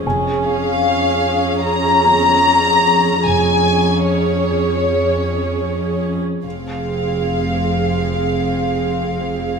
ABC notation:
X:1
M:4/4
L:1/16
Q:1/4=75
K:Fm
V:1 name="Felt piano"
a8- a2 b6- | b6 z8 z2 | z16 |]
V:2 name="Violin section"
z2 f6 b8 | a4 d8- d2 z2 | f16 |]
V:3 name="Viola section"
[DA]16 | [DA]12- [DA]3 z | [CA]16 |]
V:4 name="Cello section" clef=bass
F,,16 | F,,12- F,,3 z | F,,16 |]
V:5 name="Double bass section" clef=bass
F,,,4 z12 | F,,,4 z12 | F,,,16 |]